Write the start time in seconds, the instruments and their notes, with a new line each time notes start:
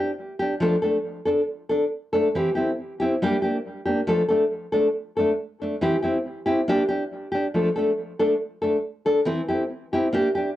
0.00 nylon-string guitar D4
0.39 nylon-string guitar D4 G4
0.60 nylon-string guitar F3 A3 D4 A4
0.82 nylon-string guitar A3 D4 A4
1.25 nylon-string guitar D4 A4, muted nylon-string guitar stroke
1.69 nylon-string guitar D4 A4, muted nylon-string guitar stroke
2.13 nylon-string guitar A3 D4 A4
2.35 nylon-string guitar E3 C4 E4 G4
2.55 nylon-string guitar C4 E4 G4
3.00 nylon-string guitar C4 E4 G4
3.22 nylon-string guitar G3 A#3 D4 G4
3.42 nylon-string guitar A#3 D4 G4
3.86 nylon-string guitar A#3 D4 G4
4.07 nylon-string guitar F3 A3 D4 A4
4.29 nylon-string guitar A3 D4 A4
4.72 nylon-string guitar A3 D4 A4
5.17 nylon-string guitar A3 D4 A4
5.62 nylon-string guitar A3 D4
5.81 nylon-string guitar E3 C4 E4 G4
6.02 nylon-string guitar C4 E4 G4
6.46 nylon-string guitar C4 E4 G4
6.68 nylon-string guitar A#3 D4 G4
6.89 nylon-string guitar D4 G4
7.32 nylon-string guitar D4 G4
7.54 nylon-string guitar F3 A3 D4 A4
7.76 nylon-string guitar A3 D4 A4
8.19 nylon-string guitar A3 D4 A4
8.62 nylon-string guitar A3 D4 A4
9.06 nylon-string guitar D4 A4, muted nylon-string guitar stroke
9.25 nylon-string guitar E3 C4 E4, muted nylon-string guitar stroke
9.48 nylon-string guitar C4 E4 G4
9.93 nylon-string guitar C4 E4 G4
10.12 nylon-string guitar A#3 D4 G4
10.35 nylon-string guitar D4 G4